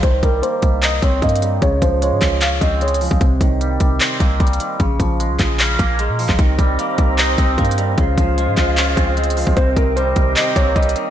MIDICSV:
0, 0, Header, 1, 6, 480
1, 0, Start_track
1, 0, Tempo, 397351
1, 36, Time_signature, 4, 2, 24, 8
1, 13410, End_track
2, 0, Start_track
2, 0, Title_t, "Felt piano"
2, 0, Program_c, 0, 0
2, 38, Note_on_c, 0, 72, 84
2, 226, Note_off_c, 0, 72, 0
2, 278, Note_on_c, 0, 70, 80
2, 466, Note_off_c, 0, 70, 0
2, 511, Note_on_c, 0, 72, 81
2, 965, Note_off_c, 0, 72, 0
2, 997, Note_on_c, 0, 75, 87
2, 1185, Note_off_c, 0, 75, 0
2, 1236, Note_on_c, 0, 73, 77
2, 1425, Note_off_c, 0, 73, 0
2, 1473, Note_on_c, 0, 75, 88
2, 1926, Note_off_c, 0, 75, 0
2, 1951, Note_on_c, 0, 73, 90
2, 2141, Note_off_c, 0, 73, 0
2, 2197, Note_on_c, 0, 72, 76
2, 2385, Note_off_c, 0, 72, 0
2, 2437, Note_on_c, 0, 73, 86
2, 2888, Note_off_c, 0, 73, 0
2, 2919, Note_on_c, 0, 77, 83
2, 3107, Note_off_c, 0, 77, 0
2, 3152, Note_on_c, 0, 75, 73
2, 3342, Note_off_c, 0, 75, 0
2, 3401, Note_on_c, 0, 73, 82
2, 3588, Note_off_c, 0, 73, 0
2, 11555, Note_on_c, 0, 72, 93
2, 11744, Note_off_c, 0, 72, 0
2, 11796, Note_on_c, 0, 70, 74
2, 11984, Note_off_c, 0, 70, 0
2, 12035, Note_on_c, 0, 72, 86
2, 12487, Note_off_c, 0, 72, 0
2, 12516, Note_on_c, 0, 75, 82
2, 12704, Note_off_c, 0, 75, 0
2, 12752, Note_on_c, 0, 73, 85
2, 12942, Note_off_c, 0, 73, 0
2, 12993, Note_on_c, 0, 75, 90
2, 13410, Note_off_c, 0, 75, 0
2, 13410, End_track
3, 0, Start_track
3, 0, Title_t, "Flute section"
3, 0, Program_c, 1, 73
3, 7717, Note_on_c, 1, 60, 78
3, 7717, Note_on_c, 1, 67, 70
3, 7717, Note_on_c, 1, 70, 70
3, 7717, Note_on_c, 1, 75, 87
3, 9617, Note_off_c, 1, 67, 0
3, 9618, Note_off_c, 1, 60, 0
3, 9618, Note_off_c, 1, 70, 0
3, 9618, Note_off_c, 1, 75, 0
3, 9636, Note_on_c, 1, 72, 73
3, 9636, Note_on_c, 1, 77, 86
3, 9637, Note_on_c, 1, 65, 81
3, 9637, Note_on_c, 1, 68, 72
3, 11537, Note_off_c, 1, 65, 0
3, 11537, Note_off_c, 1, 68, 0
3, 11537, Note_off_c, 1, 72, 0
3, 11537, Note_off_c, 1, 77, 0
3, 11556, Note_on_c, 1, 60, 81
3, 11556, Note_on_c, 1, 70, 72
3, 11557, Note_on_c, 1, 67, 73
3, 11557, Note_on_c, 1, 75, 89
3, 13410, Note_off_c, 1, 60, 0
3, 13410, Note_off_c, 1, 67, 0
3, 13410, Note_off_c, 1, 70, 0
3, 13410, Note_off_c, 1, 75, 0
3, 13410, End_track
4, 0, Start_track
4, 0, Title_t, "Clean electric guitar"
4, 0, Program_c, 2, 27
4, 36, Note_on_c, 2, 51, 86
4, 277, Note_on_c, 2, 55, 75
4, 517, Note_on_c, 2, 58, 77
4, 997, Note_on_c, 2, 63, 84
4, 1232, Note_off_c, 2, 55, 0
4, 1236, Note_off_c, 2, 51, 0
4, 1236, Note_on_c, 2, 60, 81
4, 1463, Note_off_c, 2, 58, 0
4, 1477, Note_on_c, 2, 58, 93
4, 1717, Note_on_c, 2, 55, 78
4, 1956, Note_on_c, 2, 49, 82
4, 1957, Note_off_c, 2, 55, 0
4, 1957, Note_off_c, 2, 58, 0
4, 1957, Note_off_c, 2, 60, 0
4, 1957, Note_off_c, 2, 63, 0
4, 2196, Note_on_c, 2, 53, 78
4, 2437, Note_on_c, 2, 56, 81
4, 2918, Note_on_c, 2, 61, 86
4, 3156, Note_off_c, 2, 49, 0
4, 3157, Note_on_c, 2, 60, 79
4, 3382, Note_off_c, 2, 56, 0
4, 3396, Note_off_c, 2, 53, 0
4, 3396, Note_on_c, 2, 56, 89
4, 3636, Note_on_c, 2, 53, 80
4, 3876, Note_off_c, 2, 53, 0
4, 3877, Note_off_c, 2, 56, 0
4, 3877, Note_off_c, 2, 60, 0
4, 3877, Note_off_c, 2, 61, 0
4, 3877, Note_on_c, 2, 48, 85
4, 4116, Note_on_c, 2, 51, 83
4, 4356, Note_on_c, 2, 55, 87
4, 4835, Note_on_c, 2, 60, 86
4, 5075, Note_on_c, 2, 58, 82
4, 5077, Note_off_c, 2, 48, 0
4, 5301, Note_off_c, 2, 55, 0
4, 5316, Note_off_c, 2, 51, 0
4, 5316, Note_on_c, 2, 55, 87
4, 5555, Note_on_c, 2, 51, 70
4, 5791, Note_off_c, 2, 51, 0
4, 5796, Note_off_c, 2, 55, 0
4, 5796, Note_off_c, 2, 58, 0
4, 5796, Note_off_c, 2, 60, 0
4, 5796, Note_on_c, 2, 49, 85
4, 6036, Note_on_c, 2, 53, 76
4, 6277, Note_on_c, 2, 56, 78
4, 6758, Note_on_c, 2, 61, 77
4, 6992, Note_off_c, 2, 56, 0
4, 6996, Note_off_c, 2, 49, 0
4, 6996, Note_on_c, 2, 58, 82
4, 7233, Note_off_c, 2, 53, 0
4, 7238, Note_on_c, 2, 56, 86
4, 7477, Note_on_c, 2, 53, 77
4, 7712, Note_off_c, 2, 53, 0
4, 7717, Note_off_c, 2, 56, 0
4, 7717, Note_off_c, 2, 58, 0
4, 7717, Note_off_c, 2, 61, 0
4, 7717, Note_on_c, 2, 51, 84
4, 7957, Note_on_c, 2, 55, 75
4, 8197, Note_on_c, 2, 58, 76
4, 8676, Note_on_c, 2, 63, 87
4, 8912, Note_off_c, 2, 55, 0
4, 8917, Note_off_c, 2, 51, 0
4, 8917, Note_on_c, 2, 60, 80
4, 9143, Note_off_c, 2, 58, 0
4, 9157, Note_on_c, 2, 58, 92
4, 9397, Note_on_c, 2, 55, 80
4, 9637, Note_off_c, 2, 55, 0
4, 9637, Note_off_c, 2, 58, 0
4, 9637, Note_off_c, 2, 60, 0
4, 9637, Note_off_c, 2, 63, 0
4, 9637, Note_on_c, 2, 49, 83
4, 9876, Note_on_c, 2, 53, 75
4, 10117, Note_on_c, 2, 56, 85
4, 10598, Note_on_c, 2, 61, 86
4, 10837, Note_off_c, 2, 49, 0
4, 10837, Note_on_c, 2, 60, 79
4, 11062, Note_off_c, 2, 56, 0
4, 11077, Note_off_c, 2, 53, 0
4, 11077, Note_on_c, 2, 56, 90
4, 11315, Note_on_c, 2, 53, 78
4, 11556, Note_off_c, 2, 53, 0
4, 11557, Note_off_c, 2, 56, 0
4, 11557, Note_off_c, 2, 60, 0
4, 11557, Note_off_c, 2, 61, 0
4, 11557, Note_on_c, 2, 48, 84
4, 11795, Note_on_c, 2, 51, 80
4, 12035, Note_on_c, 2, 55, 86
4, 12515, Note_on_c, 2, 60, 88
4, 12755, Note_on_c, 2, 58, 81
4, 12757, Note_off_c, 2, 48, 0
4, 12981, Note_off_c, 2, 55, 0
4, 12996, Note_off_c, 2, 51, 0
4, 12996, Note_on_c, 2, 55, 86
4, 13235, Note_on_c, 2, 51, 70
4, 13410, Note_off_c, 2, 51, 0
4, 13410, Note_off_c, 2, 55, 0
4, 13410, Note_off_c, 2, 58, 0
4, 13410, Note_off_c, 2, 60, 0
4, 13410, End_track
5, 0, Start_track
5, 0, Title_t, "808-style bass"
5, 0, Program_c, 3, 38
5, 37, Note_on_c, 3, 36, 110
5, 267, Note_off_c, 3, 36, 0
5, 276, Note_on_c, 3, 36, 98
5, 507, Note_off_c, 3, 36, 0
5, 756, Note_on_c, 3, 36, 104
5, 1217, Note_off_c, 3, 36, 0
5, 1237, Note_on_c, 3, 36, 103
5, 1467, Note_off_c, 3, 36, 0
5, 1477, Note_on_c, 3, 43, 106
5, 1937, Note_off_c, 3, 43, 0
5, 1957, Note_on_c, 3, 37, 111
5, 2187, Note_off_c, 3, 37, 0
5, 2196, Note_on_c, 3, 37, 107
5, 2556, Note_on_c, 3, 44, 95
5, 2575, Note_off_c, 3, 37, 0
5, 2671, Note_off_c, 3, 44, 0
5, 2676, Note_on_c, 3, 37, 99
5, 3137, Note_off_c, 3, 37, 0
5, 3156, Note_on_c, 3, 37, 105
5, 3733, Note_off_c, 3, 37, 0
5, 3757, Note_on_c, 3, 37, 104
5, 3869, Note_off_c, 3, 37, 0
5, 3876, Note_on_c, 3, 36, 112
5, 4107, Note_off_c, 3, 36, 0
5, 4116, Note_on_c, 3, 36, 105
5, 4577, Note_off_c, 3, 36, 0
5, 4596, Note_on_c, 3, 36, 100
5, 4827, Note_off_c, 3, 36, 0
5, 5076, Note_on_c, 3, 36, 101
5, 5307, Note_off_c, 3, 36, 0
5, 5316, Note_on_c, 3, 36, 107
5, 5547, Note_off_c, 3, 36, 0
5, 5796, Note_on_c, 3, 34, 111
5, 6027, Note_off_c, 3, 34, 0
5, 6036, Note_on_c, 3, 34, 106
5, 6396, Note_on_c, 3, 36, 95
5, 6415, Note_off_c, 3, 34, 0
5, 6511, Note_off_c, 3, 36, 0
5, 6516, Note_on_c, 3, 34, 101
5, 6977, Note_off_c, 3, 34, 0
5, 6996, Note_on_c, 3, 34, 106
5, 7356, Note_on_c, 3, 46, 98
5, 7375, Note_off_c, 3, 34, 0
5, 7585, Note_off_c, 3, 46, 0
5, 7597, Note_on_c, 3, 34, 105
5, 7709, Note_off_c, 3, 34, 0
5, 7716, Note_on_c, 3, 36, 106
5, 7947, Note_off_c, 3, 36, 0
5, 7956, Note_on_c, 3, 36, 104
5, 8187, Note_off_c, 3, 36, 0
5, 8436, Note_on_c, 3, 36, 105
5, 8897, Note_off_c, 3, 36, 0
5, 8916, Note_on_c, 3, 36, 101
5, 9147, Note_off_c, 3, 36, 0
5, 9156, Note_on_c, 3, 43, 101
5, 9617, Note_off_c, 3, 43, 0
5, 9637, Note_on_c, 3, 37, 108
5, 9867, Note_off_c, 3, 37, 0
5, 9876, Note_on_c, 3, 37, 107
5, 10237, Note_on_c, 3, 44, 100
5, 10255, Note_off_c, 3, 37, 0
5, 10351, Note_off_c, 3, 44, 0
5, 10356, Note_on_c, 3, 37, 104
5, 10817, Note_off_c, 3, 37, 0
5, 10836, Note_on_c, 3, 37, 103
5, 11413, Note_off_c, 3, 37, 0
5, 11437, Note_on_c, 3, 37, 103
5, 11550, Note_off_c, 3, 37, 0
5, 11557, Note_on_c, 3, 36, 111
5, 11787, Note_off_c, 3, 36, 0
5, 11796, Note_on_c, 3, 36, 102
5, 12257, Note_off_c, 3, 36, 0
5, 12276, Note_on_c, 3, 36, 107
5, 12507, Note_off_c, 3, 36, 0
5, 12756, Note_on_c, 3, 36, 103
5, 12987, Note_off_c, 3, 36, 0
5, 12996, Note_on_c, 3, 36, 106
5, 13227, Note_off_c, 3, 36, 0
5, 13410, End_track
6, 0, Start_track
6, 0, Title_t, "Drums"
6, 36, Note_on_c, 9, 42, 72
6, 37, Note_on_c, 9, 36, 127
6, 157, Note_off_c, 9, 42, 0
6, 158, Note_off_c, 9, 36, 0
6, 276, Note_on_c, 9, 36, 92
6, 278, Note_on_c, 9, 42, 77
6, 397, Note_off_c, 9, 36, 0
6, 399, Note_off_c, 9, 42, 0
6, 522, Note_on_c, 9, 42, 84
6, 642, Note_off_c, 9, 42, 0
6, 753, Note_on_c, 9, 42, 76
6, 756, Note_on_c, 9, 36, 93
6, 874, Note_off_c, 9, 42, 0
6, 877, Note_off_c, 9, 36, 0
6, 992, Note_on_c, 9, 42, 93
6, 997, Note_on_c, 9, 39, 117
6, 1112, Note_off_c, 9, 42, 0
6, 1118, Note_off_c, 9, 39, 0
6, 1237, Note_on_c, 9, 36, 100
6, 1240, Note_on_c, 9, 42, 84
6, 1357, Note_off_c, 9, 36, 0
6, 1360, Note_off_c, 9, 42, 0
6, 1477, Note_on_c, 9, 36, 94
6, 1477, Note_on_c, 9, 42, 48
6, 1557, Note_off_c, 9, 42, 0
6, 1557, Note_on_c, 9, 42, 64
6, 1598, Note_off_c, 9, 36, 0
6, 1637, Note_off_c, 9, 42, 0
6, 1637, Note_on_c, 9, 42, 79
6, 1719, Note_off_c, 9, 42, 0
6, 1719, Note_on_c, 9, 42, 82
6, 1839, Note_off_c, 9, 42, 0
6, 1957, Note_on_c, 9, 36, 126
6, 1957, Note_on_c, 9, 42, 72
6, 2078, Note_off_c, 9, 36, 0
6, 2078, Note_off_c, 9, 42, 0
6, 2196, Note_on_c, 9, 36, 90
6, 2199, Note_on_c, 9, 42, 79
6, 2317, Note_off_c, 9, 36, 0
6, 2320, Note_off_c, 9, 42, 0
6, 2442, Note_on_c, 9, 42, 84
6, 2563, Note_off_c, 9, 42, 0
6, 2673, Note_on_c, 9, 42, 74
6, 2676, Note_on_c, 9, 36, 93
6, 2678, Note_on_c, 9, 39, 86
6, 2794, Note_off_c, 9, 42, 0
6, 2797, Note_off_c, 9, 36, 0
6, 2799, Note_off_c, 9, 39, 0
6, 2912, Note_on_c, 9, 42, 93
6, 2918, Note_on_c, 9, 39, 116
6, 3033, Note_off_c, 9, 42, 0
6, 3039, Note_off_c, 9, 39, 0
6, 3157, Note_on_c, 9, 36, 97
6, 3159, Note_on_c, 9, 42, 83
6, 3277, Note_off_c, 9, 36, 0
6, 3280, Note_off_c, 9, 42, 0
6, 3397, Note_on_c, 9, 42, 48
6, 3477, Note_off_c, 9, 42, 0
6, 3477, Note_on_c, 9, 42, 65
6, 3557, Note_off_c, 9, 42, 0
6, 3557, Note_on_c, 9, 42, 78
6, 3638, Note_on_c, 9, 46, 81
6, 3677, Note_off_c, 9, 42, 0
6, 3757, Note_on_c, 9, 36, 101
6, 3759, Note_off_c, 9, 46, 0
6, 3876, Note_off_c, 9, 36, 0
6, 3876, Note_on_c, 9, 36, 124
6, 3876, Note_on_c, 9, 42, 74
6, 3997, Note_off_c, 9, 36, 0
6, 3997, Note_off_c, 9, 42, 0
6, 4116, Note_on_c, 9, 36, 88
6, 4118, Note_on_c, 9, 42, 78
6, 4236, Note_off_c, 9, 36, 0
6, 4238, Note_off_c, 9, 42, 0
6, 4361, Note_on_c, 9, 42, 80
6, 4482, Note_off_c, 9, 42, 0
6, 4592, Note_on_c, 9, 42, 77
6, 4596, Note_on_c, 9, 36, 94
6, 4713, Note_off_c, 9, 42, 0
6, 4717, Note_off_c, 9, 36, 0
6, 4831, Note_on_c, 9, 42, 92
6, 4837, Note_on_c, 9, 39, 113
6, 4952, Note_off_c, 9, 42, 0
6, 4958, Note_off_c, 9, 39, 0
6, 5076, Note_on_c, 9, 36, 97
6, 5079, Note_on_c, 9, 42, 85
6, 5197, Note_off_c, 9, 36, 0
6, 5199, Note_off_c, 9, 42, 0
6, 5316, Note_on_c, 9, 36, 96
6, 5316, Note_on_c, 9, 42, 47
6, 5396, Note_off_c, 9, 42, 0
6, 5396, Note_on_c, 9, 42, 65
6, 5437, Note_off_c, 9, 36, 0
6, 5476, Note_off_c, 9, 42, 0
6, 5476, Note_on_c, 9, 42, 81
6, 5558, Note_off_c, 9, 42, 0
6, 5558, Note_on_c, 9, 42, 82
6, 5679, Note_off_c, 9, 42, 0
6, 5796, Note_on_c, 9, 36, 125
6, 5796, Note_on_c, 9, 42, 74
6, 5917, Note_off_c, 9, 36, 0
6, 5917, Note_off_c, 9, 42, 0
6, 6036, Note_on_c, 9, 36, 89
6, 6038, Note_on_c, 9, 42, 77
6, 6156, Note_off_c, 9, 36, 0
6, 6159, Note_off_c, 9, 42, 0
6, 6282, Note_on_c, 9, 42, 83
6, 6403, Note_off_c, 9, 42, 0
6, 6513, Note_on_c, 9, 42, 81
6, 6516, Note_on_c, 9, 36, 93
6, 6517, Note_on_c, 9, 39, 91
6, 6634, Note_off_c, 9, 42, 0
6, 6637, Note_off_c, 9, 36, 0
6, 6638, Note_off_c, 9, 39, 0
6, 6752, Note_on_c, 9, 42, 95
6, 6757, Note_on_c, 9, 39, 115
6, 6872, Note_off_c, 9, 42, 0
6, 6878, Note_off_c, 9, 39, 0
6, 6996, Note_on_c, 9, 36, 99
6, 6999, Note_on_c, 9, 42, 83
6, 7117, Note_off_c, 9, 36, 0
6, 7120, Note_off_c, 9, 42, 0
6, 7236, Note_on_c, 9, 42, 76
6, 7357, Note_off_c, 9, 42, 0
6, 7478, Note_on_c, 9, 46, 80
6, 7596, Note_on_c, 9, 39, 75
6, 7597, Note_on_c, 9, 36, 96
6, 7599, Note_off_c, 9, 46, 0
6, 7716, Note_off_c, 9, 36, 0
6, 7716, Note_on_c, 9, 36, 127
6, 7716, Note_on_c, 9, 42, 72
6, 7717, Note_off_c, 9, 39, 0
6, 7836, Note_off_c, 9, 42, 0
6, 7837, Note_off_c, 9, 36, 0
6, 7956, Note_on_c, 9, 36, 90
6, 7958, Note_on_c, 9, 42, 76
6, 8076, Note_off_c, 9, 36, 0
6, 8079, Note_off_c, 9, 42, 0
6, 8202, Note_on_c, 9, 42, 83
6, 8323, Note_off_c, 9, 42, 0
6, 8433, Note_on_c, 9, 42, 79
6, 8436, Note_on_c, 9, 36, 93
6, 8554, Note_off_c, 9, 42, 0
6, 8557, Note_off_c, 9, 36, 0
6, 8672, Note_on_c, 9, 42, 94
6, 8677, Note_on_c, 9, 39, 113
6, 8792, Note_off_c, 9, 42, 0
6, 8798, Note_off_c, 9, 39, 0
6, 8916, Note_on_c, 9, 36, 96
6, 8919, Note_on_c, 9, 42, 84
6, 9037, Note_off_c, 9, 36, 0
6, 9040, Note_off_c, 9, 42, 0
6, 9157, Note_on_c, 9, 36, 93
6, 9157, Note_on_c, 9, 42, 46
6, 9237, Note_off_c, 9, 42, 0
6, 9237, Note_on_c, 9, 42, 65
6, 9277, Note_off_c, 9, 36, 0
6, 9317, Note_off_c, 9, 42, 0
6, 9317, Note_on_c, 9, 42, 79
6, 9398, Note_off_c, 9, 42, 0
6, 9398, Note_on_c, 9, 42, 81
6, 9519, Note_off_c, 9, 42, 0
6, 9636, Note_on_c, 9, 42, 73
6, 9637, Note_on_c, 9, 36, 127
6, 9757, Note_off_c, 9, 42, 0
6, 9758, Note_off_c, 9, 36, 0
6, 9876, Note_on_c, 9, 36, 91
6, 9878, Note_on_c, 9, 42, 80
6, 9997, Note_off_c, 9, 36, 0
6, 9999, Note_off_c, 9, 42, 0
6, 10122, Note_on_c, 9, 42, 86
6, 10243, Note_off_c, 9, 42, 0
6, 10353, Note_on_c, 9, 42, 77
6, 10356, Note_on_c, 9, 36, 92
6, 10357, Note_on_c, 9, 39, 85
6, 10474, Note_off_c, 9, 42, 0
6, 10477, Note_off_c, 9, 36, 0
6, 10478, Note_off_c, 9, 39, 0
6, 10592, Note_on_c, 9, 42, 92
6, 10598, Note_on_c, 9, 39, 113
6, 10713, Note_off_c, 9, 42, 0
6, 10719, Note_off_c, 9, 39, 0
6, 10836, Note_on_c, 9, 36, 98
6, 10839, Note_on_c, 9, 42, 84
6, 10957, Note_off_c, 9, 36, 0
6, 10960, Note_off_c, 9, 42, 0
6, 11077, Note_on_c, 9, 42, 50
6, 11157, Note_off_c, 9, 42, 0
6, 11157, Note_on_c, 9, 42, 65
6, 11237, Note_off_c, 9, 42, 0
6, 11237, Note_on_c, 9, 42, 82
6, 11318, Note_on_c, 9, 46, 84
6, 11358, Note_off_c, 9, 42, 0
6, 11437, Note_on_c, 9, 36, 100
6, 11439, Note_off_c, 9, 46, 0
6, 11556, Note_on_c, 9, 42, 72
6, 11557, Note_off_c, 9, 36, 0
6, 11557, Note_on_c, 9, 36, 125
6, 11677, Note_off_c, 9, 42, 0
6, 11678, Note_off_c, 9, 36, 0
6, 11796, Note_on_c, 9, 36, 91
6, 11799, Note_on_c, 9, 42, 75
6, 11917, Note_off_c, 9, 36, 0
6, 11919, Note_off_c, 9, 42, 0
6, 12042, Note_on_c, 9, 42, 85
6, 12163, Note_off_c, 9, 42, 0
6, 12273, Note_on_c, 9, 42, 79
6, 12276, Note_on_c, 9, 36, 93
6, 12394, Note_off_c, 9, 42, 0
6, 12397, Note_off_c, 9, 36, 0
6, 12512, Note_on_c, 9, 42, 90
6, 12518, Note_on_c, 9, 39, 112
6, 12633, Note_off_c, 9, 42, 0
6, 12638, Note_off_c, 9, 39, 0
6, 12756, Note_on_c, 9, 36, 97
6, 12759, Note_on_c, 9, 42, 81
6, 12877, Note_off_c, 9, 36, 0
6, 12880, Note_off_c, 9, 42, 0
6, 12996, Note_on_c, 9, 36, 94
6, 12997, Note_on_c, 9, 42, 48
6, 13077, Note_off_c, 9, 42, 0
6, 13077, Note_on_c, 9, 42, 63
6, 13117, Note_off_c, 9, 36, 0
6, 13157, Note_off_c, 9, 42, 0
6, 13157, Note_on_c, 9, 42, 77
6, 13237, Note_off_c, 9, 42, 0
6, 13237, Note_on_c, 9, 42, 82
6, 13358, Note_off_c, 9, 42, 0
6, 13410, End_track
0, 0, End_of_file